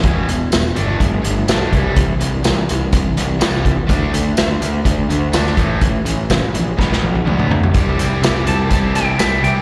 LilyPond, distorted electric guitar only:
\new Staff \with { instrumentName = "Distorted electric guitar" } { \clef bass \time 4/4 \key c \lydian \tempo 4 = 125 <e, b, e>8 <e, b,>8 <e, b,>8 <g a d'>8 <g a>8 <g a>8 <g a d'>8 <c e g>8 | <c e>8 <c e>8 <c e>8 <c e>8 <c e>8 <c e>8 <c e g>8 <c e>8 | <d a d'>8 <d a>8 <d a>8 <d a>8 <d a>8 <d a>8 <d a d'>8 <a, e a>8 | <a, e>8 <a, e>8 <a, e>8 <a, e>8 <b, fis b>8 <b, fis>8 <b, fis b>8 <b, fis>8 |
<c e g c' g'>8 <c e g c' g'>8 <c e g c' g'>8 <c e g c' g'>8 <c e g c' g'>8 <c e g c' g'>8 <c e g c' g'>8 <c e g c' g'>8 | }